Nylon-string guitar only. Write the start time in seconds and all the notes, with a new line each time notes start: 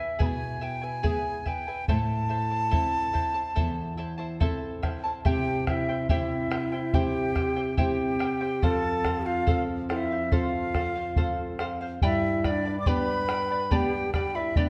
0.21 B2
1.05 B3 E4 G#4
1.90 A2
2.74 C4 E4 A4
3.58 E2
4.41 C4 E4 A4
5.26 C3
6.11 C4 E4 G4
6.94 C4 E4 G4
7.79 C4 E4 G4
8.63 F2
9.48 F3 C4 A4
10.32 C4 F4 A4
11.17 C4 F4 A4
12.03 G2
12.87 B3 D4 G4
13.72 B3 D4 G4
14.57 B3 D4 G4